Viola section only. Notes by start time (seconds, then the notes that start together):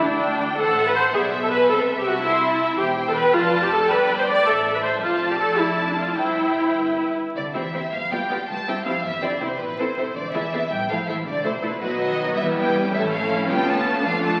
0.02 D4
0.58 A4
0.87 B4
0.96 C5
1.14 G#4
1.43 A4
1.52 B4
1.69 A4
1.99 G4
2.06 F#4
2.24 E4
2.78 G4
3.08 A4
3.16 B4
3.34 F4
3.61 G4
3.72 A4
3.91 B4
4.19 C5
4.27 D5
4.47 A4
4.75 B4
4.82 C5
5.01 F4
5.31 G4
5.39 A4
5.59 E4
5.89 D4
5.97 F4
6.18 E4
7.54 C4 E4
7.74 C4 E4
8.11 B3 F4
8.30 B3 F4
8.68 C4 E4
8.85 C4 E4
9.23 C4 E4
9.41 C4 E4
9.80 C4 E4
9.97 C4 E4
10.34 B3 E4
10.53 B3 E4
10.92 A3 E4
11.09 A3 E4
11.44 A3 E4
11.63 A3 E4
11.80 F#3 B3
12.37 G3
12.93 A3 C#4
13.47 B3
14.04 A3 D4